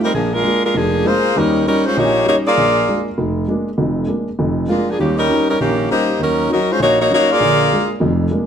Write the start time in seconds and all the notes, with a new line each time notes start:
0.04 G3 C4 D#4 A#4
0.14 A#1 F3 A#3 D4 G#4
0.34 G#3 D4 F4 A#4
0.43 G#3 A#3 D4
0.65 G#3 D4 F4 A#4
0.74 F1 F3 A#3 D4 G#4
1.05 G#3 A#3 D4 F4 G#4 C5
1.36 D#2 G3 C#4 D#4 A#4
1.66 G3 C#4 D#4 A#4
1.86 G#3 C#4 F4 C5
1.97 A#1 A#2 A#3 D#4 G4 C#5
2.26 G3 A#3 C#4 D#4 G4 C#5
2.46 A#3 F4 G#4 D5
2.57 A#1
2.89 G#3 A#3 D4
3.18 F1
3.48 G#3 A#3 D4
3.78 F1 F2
4.07 G#3 A#3 D4
4.39 F1 F2
4.68 G#3 A#3 D4 F4
4.89 F3 A#3 D4 G#4
4.98 D#2 D#3 G3 A#3 C#4 G4
5.18 G3 C#4 D#4 A#4
5.29 G3 C#4 D#4
5.49 G3 C#4 D#4 A#4
5.60 A#1 D#3 A#3 C#4 G4
5.91 G3 A#3 C#4 D#4 G4 C5
6.19 D#2 F#3 C#4 D#4 A#4
6.50 F#3 C#4 D#4 A#4
6.71 G#3 C#4 F4 C5
6.79 A#1 A#3 D#4 F#4 C#5
7.01 A#3 D#4 F#4 C#5
7.10 F#3 C#4 D#4 F#4 C#5
7.14 A#3
7.31 A#3 F4 G#4 D5
7.40 A#1 D3
7.72 G#3 A#3 D4
8.00 F1 F2
8.31 G#3 A#3 D4